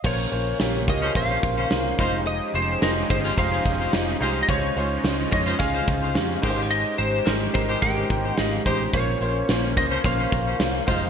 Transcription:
0.04 fingered electric bass A#1, grand piano A#2 A#3 C#4 F4 C5, analog synth pad C#3 A#3 C#4, lead electric guitar C#5, kick, crash
0.31 fingered electric bass A#1, grand piano A#3 C#4 F4 C5, closed hi-hat
0.59 fingered electric bass A#1, grand piano A#3 C#4 F4 G4, snare, closed hi-hat, tambourine
0.87 fingered electric bass C#2, grand piano A#3 C#4 F4 G4, lead electric guitar D#5, kick, closed hi-hat
1.02 horn section F3 C#4 C5
1.15 fingered electric bass A#1, grand piano A#3 C#4 F4 C5, lead electric guitar F5, kick, closed hi-hat
1.29 horn section F3 C#4 C5, closed hi-hat
1.42 fingered electric bass A#1, grand piano A#3 C#4 F4 C5, kick, closed hi-hat
1.57 horn section F3 C#4 C5
1.71 fingered electric bass C2, grand piano A#3 C#4 F4 C5, snare, closed hi-hat, tambourine
1.98 fingered electric bass F1, analog synth pad F3 D#4 G4 G#4, grand piano G#3 D#4 F4 C5, horn section G#3 F4 C5, kick, open hi-hat
2.27 lead electric guitar D#5, closed hi-hat
2.54 fingered electric bass F1, grand piano G#3 D#4 F4 C5, lead electric guitar C5, closed hi-hat
2.81 fingered electric bass F1, grand piano G#3 D#4 F4 C5, lead electric guitar A#4, snare, closed hi-hat, tambourine
3.09 fingered electric bass G1, grand piano G#3 D#4 F4 G4, lead electric guitar C5, kick, closed hi-hat
3.24 horn section G#3 F4 C5
3.37 fingered electric bass F1, grand piano G#3 D#4 F4 C5, lead electric guitar F5, kick, closed hi-hat
3.51 horn section G#3 F4 C5
3.65 fingered electric bass F1, grand piano G#3 D#4 F4 C5, kick, closed hi-hat
3.79 horn section G#3 F4 C5
3.93 fingered electric bass F1, grand piano G#3 D#4 F4 C5, snare, closed hi-hat, tambourine
4.20 fingered electric bass C2, grand piano G#3 D#4 F4 G4, horn section G#3 F4 C5, open hi-hat
4.43 lead electric guitar D#5
4.48 fingered electric bass C#2, grand piano C#3 G#3 C#4 F4 C5, analog synth pad C#3 G#3 F4, lead electric guitar C#5, kick, closed hi-hat
4.63 closed hi-hat
4.76 fingered electric bass C#2, grand piano G#3 C#4 F4 C5, closed hi-hat
5.04 fingered electric bass C#2, grand piano G#3 C#4 F4 C5, snare, closed hi-hat, tambourine
5.31 fingered electric bass F2, grand piano G#3 C#4 F4 C#5, lead electric guitar D#5, kick, closed hi-hat
5.45 horn section G#3 F4 C5
5.59 fingered electric bass C#2, grand piano G#3 C#4 F4 G#4, lead electric guitar F5, kick, closed hi-hat
5.73 horn section G#3 F4 C5, closed hi-hat
5.86 fingered electric bass C#2, grand piano G#3 C#4 F4 C5, kick, closed hi-hat
6.01 horn section G#3 F4 C5
6.14 fingered electric bass F2, grand piano G#3 C#4 F4 G4, snare, closed hi-hat, tambourine
6.42 fingered electric bass G#1, grand piano G#2 G#3 D#4 G4 A#4, horn section G#3 G4 C5, analog synth pad G#3 G4, kick, crash
6.50 grand piano C5
6.71 lead electric guitar D#5, closed hi-hat
6.98 fingered electric bass G#1, grand piano G#3 D#4 G4 C5, lead electric guitar C5, closed hi-hat
7.26 fingered electric bass G#1, grand piano G#3 D#4 G4 C5, lead electric guitar A#4, snare, closed hi-hat, tambourine
7.54 fingered electric bass G#1, grand piano G#3 D#4 G4 A#4, lead electric guitar C5, kick, closed hi-hat
7.68 horn section G#3 G4 C5
7.82 fingered electric bass G#1, grand piano G#3 D#4 G4 A#4, lead electric guitar G5, kick, closed hi-hat
7.96 horn section G#3 G4 C5, closed hi-hat
8.10 fingered electric bass G#1, grand piano G#3 D#4 G4 C5, kick, closed hi-hat
8.24 horn section G#3 G4 C5
8.37 fingered electric bass G#1, grand piano G#3 D#4 G4 D#5, lead electric guitar F5, snare, closed hi-hat, tambourine
8.65 fingered electric bass A1, grand piano G#3 D#4 G4 C5, horn section G#3 G4 C5, kick, open hi-hat
8.93 fingered electric bass A#1, grand piano A#2 A#3 C#4 F4 C5, analog synth pad A#3 C#4, lead electric guitar C#5, kick, closed hi-hat
9.21 fingered electric bass A#1, grand piano A#3 C#4 F4 C5, closed hi-hat
9.49 fingered electric bass A#1, grand piano A#3 C#4 F4 C5, snare, closed hi-hat, tambourine
9.76 fingered electric bass C#2, grand piano A#3 C#4 F4 C5, lead electric guitar D#5, kick, closed hi-hat
9.90 horn section F3 C#4 C5
10.04 fingered electric bass A#1, grand piano A#3 C#4 F4 C5, lead electric guitar F5, kick, closed hi-hat
10.18 horn section F3 C#4 C5
10.31 fingered electric bass A#1, grand piano A#3 C#4 F4 C5, kick, closed hi-hat
10.46 horn section F3 C#4 C5
10.59 fingered electric bass C2, grand piano A#3 C#4 F4 C5, snare, closed hi-hat, tambourine
10.87 fingered electric bass F1, analog synth pad F3 D#4 G4 G#4, grand piano G#3 D#4 F4 C5, horn section G#3 F4 C5, kick, open hi-hat

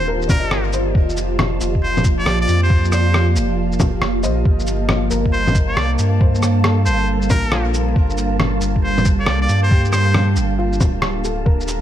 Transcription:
Already playing: sub bass D#1, ambient pad D#3 F4 G4 C5 F5, synth texture A#3 A5, upright piano C5
0.08 upright piano A#4
0.22 shaker
0.28 sub bass F1, muted trumpet A#4, upright piano D5, kick, low bongo, cabasa, shaker
0.39 upright piano D#5
0.44 sub bass G1
0.51 cross-stick
0.73 upright piano C5, cabasa, shaker
0.95 sub bass F1, ambient pad F3, kick
1.10 shaker
1.14 ambient pad A#3, cabasa, shaker
1.39 cross-stick, low bongo
1.61 sub bass F1, cabasa, shaker
1.75 kick
1.83 muted trumpet C5
1.97 low bongo, shaker
2.04 kick, cabasa, shaker
2.19 muted trumpet D5
2.26 sub bass A#1, cross-stick
2.41 muted trumpet D5
2.48 sub bass F2, cabasa, shaker
2.63 muted trumpet C5
2.70 kick
2.85 shaker
2.92 muted trumpet C5, upright piano D5, cross-stick, cabasa, shaker
3.14 cross-stick
3.36 sub bass F1, cabasa, shaker
3.72 shaker
3.80 kick, low bongo, cabasa, shaker
4.01 sub bass F1, cross-stick
4.23 sub bass A#1, upright piano C5 D#5, cabasa, shaker
4.45 sub bass G1, ambient pad G3, synth texture A#3 A5, kick
4.60 shaker
4.67 cabasa, shaker
4.78 ambient pad D4
4.89 cross-stick, low bongo
5.07 sub bass G1, upright piano A#4, ambient pad A5, cabasa, shaker
5.26 kick
5.32 muted trumpet C5
5.47 low bongo, shaker
5.55 kick, cabasa, shaker
5.68 muted trumpet D5
5.77 sub bass C2, cross-stick
5.98 sub bass G2, cabasa, shaker
6.21 upright piano C5, kick
6.35 shaker
6.43 cross-stick, cabasa, shaker
6.64 upright piano A4, cross-stick
6.86 sub bass G1, muted trumpet C5, cabasa, shaker
7.22 shaker
7.30 sub bass A1, upright piano A#4, muted trumpet A#4, kick, low bongo, cabasa, shaker
7.45 sub bass A#1
7.52 upright piano F4, cross-stick
7.74 cabasa, shaker
7.96 sub bass G1, kick
8.10 shaker
8.18 cabasa, shaker
8.37 ambient pad G4, cross-stick, low bongo
8.61 sub bass G1, cabasa, shaker
8.76 kick
8.83 muted trumpet C5
8.98 low bongo, shaker
9.05 kick, cabasa, shaker
9.20 muted trumpet D5
9.26 sub bass C2, cross-stick
9.41 muted trumpet D5
9.49 sub bass G2, cabasa, shaker
9.63 muted trumpet C5
9.71 upright piano G4, kick
9.85 shaker
9.92 muted trumpet C5, cross-stick, cabasa, shaker
10.14 cross-stick, low bongo
10.36 sub bass G1, cabasa, shaker
10.59 upright piano F4
10.73 shaker
10.81 sub bass D1, kick, low bongo, cabasa, shaker
11.02 cross-stick
11.24 upright piano A4, cabasa, shaker
11.46 sub bass D#1, ambient pad D#3, upright piano A#4, kick
11.61 shaker
11.68 cabasa, shaker
11.77 ambient pad F4 C5

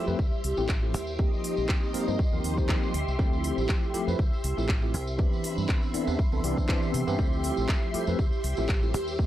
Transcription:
Already playing: string machine G4 E5 C6
0.07 fingered electric bass F2, tine electric piano F3 A3 C4 E4 B4, tambourine
0.19 kick, tambourine
0.32 tambourine
0.44 fingered electric bass C2, open hi-hat
0.57 fingered electric bass A1, tine electric piano F3 A3 C4 E4 G4, tambourine
0.69 kick, clap, tambourine
0.82 tine electric piano F3 A3 C4 E4 G4, tambourine
0.94 fingered electric bass D#2, open hi-hat
1.07 tambourine
1.18 tine electric piano F3 A#3 C4 D#4 G4, string machine G4 D#5, kick, tambourine
1.33 tambourine
1.44 open hi-hat
1.57 fingered electric bass A#1, tambourine
1.69 kick, clap, tambourine
1.83 tambourine
1.93 tine electric piano F3 A#3 C4 D#4 A#4, muted fingered electric bass stroke, open hi-hat
2.07 fingered electric bass G2, tine electric piano F3 A#3 C4 D#4 G4, tambourine
2.19 kick, tambourine
2.32 fingered electric bass D#2, tine electric piano F3 A#3 C4 D#4 A#4, tambourine
2.44 fingered electric bass D#2, open hi-hat
2.57 tine electric piano F3 A#3 C4 D#4 C5, kick, tambourine
2.69 kick, clap, tambourine
2.83 tambourine
2.94 fingered electric bass D2, string machine E5, open hi-hat
3.08 fingered electric bass C2, tambourine
3.18 fingered electric bass D2, tine electric piano F3 A3 C4 E4 G4, kick, tambourine
3.33 tambourine
3.44 open hi-hat
3.58 fingered electric bass A1, tambourine
3.69 kick, clap, tambourine
3.83 tambourine
3.93 tine electric piano F3 A3 C4 E4 G4, muted fingered electric bass stroke, open hi-hat
4.07 fingered electric bass F2, tine electric piano F3 A3 C4 E4 B4, tambourine
4.19 fingered electric bass D2, kick, tambourine
4.33 tambourine
4.44 fingered electric bass C2, open hi-hat
4.57 fingered electric bass A1, tine electric piano F3 A3 C4 E4 G4, tambourine
4.69 kick, clap
4.82 tine electric piano F3 A3 C4 E4 G4, tambourine
4.94 fingered electric bass C2, open hi-hat
5.07 tambourine
5.18 tine electric piano E3 B3 C4 D4 G4, string machine B5 C6, kick, tambourine
5.33 tambourine
5.44 open hi-hat
5.58 fingered electric bass G2, tambourine
5.69 kick, clap, tambourine
5.83 tambourine
5.93 tine electric piano E3 B3 C4 D4 A4, muted fingered electric bass stroke, open hi-hat
6.07 fingered electric bass E2, tine electric piano E3 B3 C4 D4 G4, tambourine
6.19 kick
6.32 fingered electric bass C2, tine electric piano E3 B3 C4 D4 A4, tambourine
6.43 fingered electric bass C2, tine electric piano E3 B3 C4 D4 G4, open hi-hat
6.58 kick, tambourine
6.68 tine electric piano E3 B3 C4 D4 G4, kick, clap, tambourine
6.83 tambourine
6.94 fingered electric bass C3, open hi-hat
7.07 fingered electric bass G2, tine electric piano E3 B3 C4 D4 G4, tambourine
7.18 fingered electric bass D2, tine electric piano F3 A3 C4 E4 G4, string machine G4, kick, tambourine
7.33 tambourine
7.44 open hi-hat
7.57 fingered electric bass A1, tambourine
7.69 kick, clap, tambourine
7.82 tambourine
7.93 tine electric piano F3 A3 C4 E4 G4, muted fingered electric bass stroke, open hi-hat
8.07 fingered electric bass F2, tine electric piano F3 A3 C4 E4 B4, tambourine
8.19 fingered electric bass D2, kick, tambourine
8.33 tambourine
8.44 fingered electric bass C2, open hi-hat
8.57 fingered electric bass A1, tine electric piano F3 A3 C4 E4 G4, tambourine
8.69 kick, clap, tambourine
8.82 tine electric piano F3 A3 C4 E4 G4, tambourine
8.94 fingered electric bass D#2, open hi-hat
9.08 tambourine
9.18 tine electric piano F3 A#3 C4 D#4 G4, string machine D#5, kick, tambourine

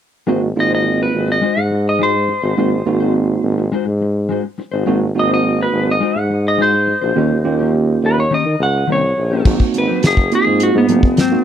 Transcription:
0.27 tuba G#1, clean electric guitar G#3 D#4 F#4 C5, tine electric piano A#3 C4 D#4 F#4
0.42 muted clean electric guitar stroke
0.56 tuba G#1, tine electric piano A#3 C4 D#4 F4, muted clean electric guitar stroke
0.60 electric slide guitar D#5
0.69 clean electric guitar D#4 F#4 C5
0.75 electric slide guitar D#5
0.84 muted clean electric guitar stroke
1.03 electric slide guitar B4
1.14 tuba G#1
1.28 electric slide guitar D#5, muted clean electric guitar stroke
1.41 clean electric guitar G#3 D#4 F#4 C5
1.56 tuba G#2, electric slide guitar F#5, muted clean electric guitar stroke
1.71 muted clean electric guitar stroke
1.89 electric slide guitar D#5
1.99 clean electric guitar G#3 D#4 F#4 C5, electric slide guitar C5
2.14 muted clean electric guitar stroke
2.28 muted clean electric guitar stroke
2.43 tuba G#1, clean electric guitar D#4 F#4 C5
2.57 tuba G#1, clean electric guitar G#3 D#4 F#4 C5, tine electric piano A#3 C4 D#4 F#4
2.72 muted clean electric guitar stroke
2.86 tuba G#1, tine electric piano A#3 C4 D#4 F#4, muted clean electric guitar stroke
3.00 clean electric guitar D#4 F#4 C5
3.15 muted clean electric guitar stroke
3.43 tuba G#1
3.58 muted clean electric guitar stroke
3.72 clean electric guitar G#3 D#4 F#4 C5
3.86 tuba G#2, muted clean electric guitar stroke
4.01 muted clean electric guitar stroke
4.29 clean electric guitar G#3 D#4 F#4 C5
4.44 muted clean electric guitar stroke
4.58 muted clean electric guitar stroke
4.72 tuba G#1, clean electric guitar D#4 F#4 C5
4.86 tuba G#1, clean electric guitar G#3 D#4 F#4 C5, tine electric piano A#3 C4 D#4 F#4
5.01 muted clean electric guitar stroke
5.15 tuba G#1, tine electric piano A#3 C4 D#4 F#4, muted clean electric guitar stroke
5.19 electric slide guitar D#5
5.28 clean electric guitar D#4 F#4 C5
5.34 electric slide guitar D#5
5.43 muted clean electric guitar stroke
5.63 electric slide guitar B4
5.73 tuba G#1
5.86 muted clean electric guitar stroke
5.91 electric slide guitar D#5
6.00 clean electric guitar G#3 D#4 F#4 C5
6.16 tuba G#2, electric slide guitar F#5, muted clean electric guitar stroke
6.30 muted clean electric guitar stroke
6.48 electric slide guitar D#5
6.58 clean electric guitar G#3 D#4 F#4 C5
6.62 electric slide guitar C5
6.73 muted clean electric guitar stroke
6.87 muted clean electric guitar stroke
7.01 tuba A#1, clean electric guitar D#4 F#4 C5
7.15 tuba D#2, clean electric guitar D#3 A#3 C#4 G4, tine electric piano A#3 C#4 F4 G4
7.31 muted clean electric guitar stroke
7.44 tuba D#2, tine electric piano A#3 C#4 F4 G4, muted clean electric guitar stroke
7.59 clean electric guitar A#3 C#4 G4
7.74 muted clean electric guitar stroke
8.03 tuba D#2, electric slide guitar B4
8.17 electric slide guitar C#5, muted clean electric guitar stroke
8.31 clean electric guitar D#3 A#3 C#4 G4, electric slide guitar D#5
8.45 tuba D#3, muted clean electric guitar stroke
8.59 tuba C#2, electric slide guitar F#5, muted clean electric guitar stroke
8.87 tuba C2, clean electric guitar D#3 A#3 C#4 G4
8.92 electric slide guitar C#5
9.02 muted clean electric guitar stroke
9.17 tuba A#1, muted clean electric guitar stroke
9.31 clean electric guitar A#3 C#4 G4
9.45 tuba G#1, clean electric guitar G#2 F#3 A#3 C4, tine electric piano A#3 C4 D#4 F#4, kick, crash
9.60 tuba G#1, kick
9.74 tuba G#1, muted clean electric guitar stroke, closed hi-hat
9.78 electric slide guitar B4
9.87 clean electric guitar F#3 A#3 C4
10.02 tuba F#1, muted clean electric guitar stroke, snare, closed hi-hat
10.07 electric slide guitar G#4
10.16 muted clean electric guitar stroke, kick
10.31 tine electric piano A#3 C4 D#4 F4, electric slide guitar G#4, closed hi-hat
10.45 tuba G#2, muted clean electric guitar stroke
10.60 electric slide guitar F#4, closed hi-hat
10.74 tuba G#2, electric slide guitar B3, muted clean electric guitar stroke
10.88 tuba F#1, clean electric guitar G#2 F#3 A#3 C4, closed hi-hat
11.03 kick
11.16 clean electric guitar G#2 F#3 A#3 C4, snare, closed hi-hat
11.20 electric slide guitar C4
11.32 tine electric piano A#3 C4 D#4 F#4

